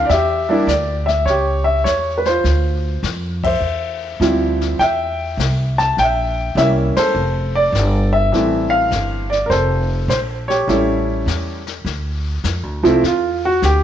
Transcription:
0.05 upright bass E2, upright piano D5 E5, brush sweep, snare
0.13 upright piano G4
0.49 upright piano G3 A#3 D4 E4
0.67 upright bass D2, upright piano D5, snare, hi-hat pedal
1.06 upright piano E5, snare
1.26 upright bass C#2, upright piano C#5, brush sweep, snare
1.30 upright piano G4
1.64 upright piano E5
1.84 upright bass E2, upright piano C#5, snare, hi-hat pedal
2.18 upright piano B4
2.25 upright piano F4 C5, snare
2.44 upright bass D2, brush sweep, snare
3.03 upright bass F2, snare, hi-hat pedal
3.44 upright piano C5 E5, kick, ride
3.61 upright bass E2, brush sweep
4.20 upright bass D2, upright piano F3 G3 C4 E4, snare, hi-hat pedal
4.61 snare
4.79 upright bass E2, upright piano E5 G5, brush sweep, snare
5.37 upright bass C2, snare, hi-hat pedal
5.78 upright piano A5, snare
5.97 upright bass A#1, upright piano G5, brush sweep, snare
6.02 upright piano E5
6.55 upright bass C2, upright piano G3 A#3 C#4 E4 E5, snare, hi-hat pedal
6.95 upright piano A4 C5, muted upright bass stroke, snare, ride
7.15 upright bass F1, brush sweep
7.55 upright piano D5
7.72 upright bass G1, snare, hi-hat pedal
8.13 upright piano E5
8.32 upright bass A1, upright piano E3 G3 A3 C4, brush sweep, snare
8.70 upright piano F5
8.91 upright bass G1, snare, hi-hat pedal
9.30 upright piano D5, snare
9.46 upright bass F1, upright piano A#4 C5
9.51 upright piano A4, brush sweep, snare
10.08 upright bass A#1, upright piano C5, snare, hi-hat pedal
10.48 upright piano G4 C#5, snare
10.67 upright bass A1, upright piano G3 A3 C#4 E4, brush sweep, snare
11.26 upright bass E2, snare, hi-hat pedal
11.67 snare
11.85 upright bass D2, brush sweep, snare
12.44 upright bass F2, snare, hi-hat pedal
12.63 upright bass D2
12.83 upright bass C2, upright piano F3 A3 C4 E4, snare
13.03 upright bass E2, upright piano F4, brush sweep, snare
13.45 upright piano F#4
13.62 upright bass D2, upright piano G4, snare, hi-hat pedal

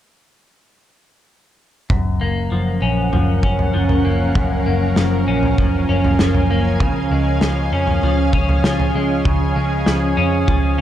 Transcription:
1.90 picked electric bass F#1, clean electric guitar F#2, ambient pad C#4 A#4 F5 F#5, kick, floor tom
2.21 picked electric bass F#1, clean electric guitar A#3
2.51 picked electric bass F#1, clean electric guitar F3
2.82 picked electric bass A#1, clean electric guitar C#4
3.13 picked electric bass F#1, clean electric guitar F3, floor tom
3.43 picked electric bass F#1, clean electric guitar C#4, kick
3.59 floor tom
3.74 picked electric bass F#1, clean electric guitar F3
3.89 floor tom
4.05 picked electric bass F#1, clean electric guitar A#3
4.35 picked electric bass F#1, clean electric guitar F#2, ambient pad G#5, kick, floor tom
4.66 picked electric bass F#1, clean electric guitar A#3
4.96 picked electric bass F#1, clean electric guitar F3, snare
5.27 picked electric bass A#1, clean electric guitar C#4
5.43 floor tom
5.58 picked electric bass F#1, clean electric guitar F3, kick, floor tom
5.89 picked electric bass F#1, clean electric guitar C#4
6.04 floor tom
6.19 picked electric bass F#1, clean electric guitar F3, snare
6.34 floor tom
6.50 picked electric bass F#1, clean electric guitar A#3
6.80 picked electric bass C#2, clean electric guitar C#3, ambient pad C#4 G#4, kick, floor tom
7.11 picked electric bass C#2, clean electric guitar G#3
7.41 picked electric bass C#2, clean electric guitar F3, snare
7.72 picked electric bass F2, clean electric guitar C#4
7.87 floor tom
8.03 picked electric bass C#2, clean electric guitar F3, floor tom
8.33 picked electric bass C#2, clean electric guitar C#4, kick
8.49 floor tom
8.64 picked electric bass C#2, clean electric guitar F3, snare
8.80 floor tom
8.94 picked electric bass C#2, clean electric guitar G#3
9.25 picked electric bass C#2, clean electric guitar C#3, kick, floor tom
9.56 picked electric bass C#2, clean electric guitar G#3
9.86 picked electric bass C#2, clean electric guitar F3, snare
10.17 picked electric bass F2, clean electric guitar C#4
10.48 picked electric bass C#2, clean electric guitar F3, kick, floor tom

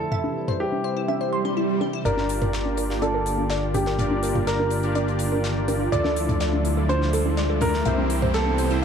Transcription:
Already playing: analog synth pad E4, grand piano A4
0.12 analog synth pad C3 E3 G3, synth arpeggio sound E5, mid tom
0.24 high conga
0.48 synth arpeggio sound C5, mid tom
0.60 grand piano G4
0.72 high conga
0.84 synth arpeggio sound C5
0.97 synth arpeggio sound E4
1.08 synth arpeggio sound E5, swell, high conga
1.21 synth arpeggio sound C5
1.33 synth arpeggio sound C6
1.45 synth arpeggio sound G4, high conga
1.57 synth arpeggio sound E4
1.81 synth arpeggio sound G4, high conga
1.93 synth arpeggio sound E4
2.05 analog synth bass G1, analog synth pad D3 G3 A#3 F4, supersaw synth D4 F4 G4 A#4 D5, grand piano A#4, synth arpeggio sound D5, closed hi-hat, mid tom, riser
2.17 snare, high conga
2.29 closed hi-hat, open hi-hat
2.41 synth arpeggio sound A#4, closed hi-hat, mid tom
2.53 snare, closed hi-hat
2.66 high conga
2.77 synth arpeggio sound A#4, closed hi-hat, open hi-hat
2.90 supersaw synth A#3 D4 F4 G4 D5, synth arpeggio sound F4, snare
3.02 grand piano A4, synth arpeggio sound D5, closed hi-hat, high conga
3.14 synth arpeggio sound A#4
3.26 closed hi-hat, open hi-hat
3.38 high conga
3.50 synth arpeggio sound D5, snare, closed hi-hat
3.74 grand piano G4, closed hi-hat, mid tom, open hi-hat, high conga
3.86 synth arpeggio sound A#4, snare
3.99 supersaw synth D4 F4 G4 A#4 D5, closed hi-hat, mid tom
4.11 high conga
4.23 synth arpeggio sound A#4, closed hi-hat, open hi-hat
4.35 synth arpeggio sound F4, mid tom
4.47 grand piano A#4, synth arpeggio sound D5, snare, closed hi-hat
4.60 synth arpeggio sound A#4, high conga
4.70 closed hi-hat, open hi-hat
4.83 supersaw synth D4 F4 G4 A#4 D5, closed hi-hat
4.95 synth arpeggio sound D5, closed hi-hat, high conga
5.08 closed hi-hat
5.19 closed hi-hat, open hi-hat
5.32 synth arpeggio sound A#4, high conga
5.44 snare, closed hi-hat
5.68 synth arpeggio sound A#4, closed hi-hat, open hi-hat, high conga
5.80 synth arpeggio sound F4
5.92 analog synth bass D2, analog synth pad D3 F3 A3 E5, supersaw synth D4 E4 F4 A4 D5, grand piano D5, synth arpeggio sound D5, closed hi-hat, mid tom
6.04 synth arpeggio sound A4, snare, high conga
6.16 closed hi-hat, open hi-hat
6.29 closed hi-hat, mid tom
6.40 synth arpeggio sound D5, snare, closed hi-hat
6.53 high conga
6.65 closed hi-hat, open hi-hat
6.77 supersaw synth D4 E4 F4 A4 D5, synth arpeggio sound A4
6.89 grand piano C5, closed hi-hat, high conga
7.02 snare
7.13 synth arpeggio sound A4, closed hi-hat, open hi-hat
7.26 synth arpeggio sound E4, high conga
7.37 synth arpeggio sound D5, snare, closed hi-hat
7.50 synth arpeggio sound A4
7.61 grand piano A#4, closed hi-hat, mid tom, open hi-hat, high conga
7.74 snare
7.85 analog synth bass C2, analog synth pad C3 E3 G3, supersaw synth G3 C4 E4 G4 C5, synth arpeggio sound E5, closed hi-hat, mid tom
7.98 high conga
8.10 closed hi-hat, open hi-hat
8.22 synth arpeggio sound C5, mid tom
8.34 grand piano A4, snare, closed hi-hat
8.47 high conga
8.58 synth arpeggio sound C5, closed hi-hat, open hi-hat
8.71 supersaw synth G3 C4 E4 G4 C5, synth arpeggio sound E4, closed hi-hat

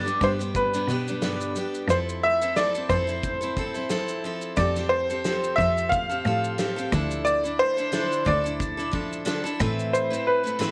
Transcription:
Already playing: cello G2, upright piano D5
0.05 steel-string acoustic guitar G3 B3 D4 G4, shaker
0.21 cello G2, steel-string acoustic guitar G3 B3 D4 G4, upright piano C5, kick
0.39 steel-string acoustic guitar G3 B3 D4 G4, shaker
0.55 upright piano B4, kick, shaker
0.73 steel-string acoustic guitar G3 B3 D4 G4, shaker
0.87 cello B2, steel-string acoustic guitar G3 B3 D4 G4, shaker
1.08 steel-string acoustic guitar G3 B3 D4 G4, shaker
1.22 steel-string acoustic guitar G2 D3 G3 B3 D4 G4, snare, shaker
1.41 shaker
1.56 steel-string acoustic guitar G3 B3 D4 G4, shaker
1.75 shaker
1.88 cello F2, steel-string acoustic guitar F3 C4 E4 A4, upright piano C5, shaker
2.09 shaker
2.23 upright piano E5
2.42 steel-string acoustic guitar C4 E4 A4, shaker
2.56 steel-string acoustic guitar F3 C4 E4 A4, upright piano D5, snare, shaker
2.74 steel-string acoustic guitar C4 E4 A4, shaker
2.89 cello F2, steel-string acoustic guitar F3 C4 E4 A4, upright piano C5, kick
3.07 steel-string acoustic guitar C4 E4 A4, shaker
3.23 kick, shaker
3.41 steel-string acoustic guitar C4 E4 A4, shaker
3.57 steel-string acoustic guitar F3 C4 E4 A4, kick
3.74 steel-string acoustic guitar C4 E4 A4, shaker
3.89 steel-string acoustic guitar F3 C4 E4 A4, snare, shaker
4.08 shaker
4.24 steel-string acoustic guitar F3 C4 E4 A4
4.41 shaker
4.57 cello F2, steel-string acoustic guitar F3 C4 G4 A4, upright piano D5, kick, shaker
4.76 steel-string acoustic guitar C4 G4 A4, snare, shaker
4.89 upright piano C5
5.10 steel-string acoustic guitar C4 G4 A4, shaker
5.24 steel-string acoustic guitar F3 C4 G4 A4, snare, shaker
5.44 shaker
5.56 cello F2, steel-string acoustic guitar F3, upright piano E5, kick
5.60 steel-string acoustic guitar C4 G4 A4
5.78 shaker
5.89 upright piano F5, kick, shaker
6.09 steel-string acoustic guitar C4 G4 A4, shaker
6.25 cello A2, steel-string acoustic guitar F3 C4 G4 A4
6.44 shaker
6.58 steel-string acoustic guitar F3 C4 G4 A4, snare, shaker
6.76 steel-string acoustic guitar C4 G4 A4, shaker
6.92 cello D2, steel-string acoustic guitar D3 F3 D4 E4 A4, kick
7.11 shaker
7.25 upright piano D5, shaker
7.43 steel-string acoustic guitar D4 E4 A4, shaker
7.59 upright piano C5
7.77 steel-string acoustic guitar D4 E4 A4, shaker
7.92 steel-string acoustic guitar D3 F3 D4 E4 A4, snare, shaker
8.12 shaker
8.25 cello D2, steel-string acoustic guitar F3 D4 E4 A4, upright piano D5, kick
8.44 steel-string acoustic guitar D4 E4 A4, shaker
8.60 kick, shaker
8.77 steel-string acoustic guitar D4 E4 A4, shaker
8.91 steel-string acoustic guitar F3 D4 E4 A4, kick
9.13 shaker
9.25 steel-string acoustic guitar D3 F3 D4 E4 A4, snare, shaker
9.44 steel-string acoustic guitar D4 E4 A4, shaker
9.60 steel-string acoustic guitar A2 E3 A3 C4 E4 B4, cello A2, kick
9.79 shaker
9.93 upright piano C5, shaker
10.10 steel-string acoustic guitar A3 C4 E4 B4, shaker
10.27 upright piano B4
10.43 steel-string acoustic guitar A3 C4 E4 B4, shaker
10.59 steel-string acoustic guitar A2 E3 A3 C4 E4 B4, snare, shaker

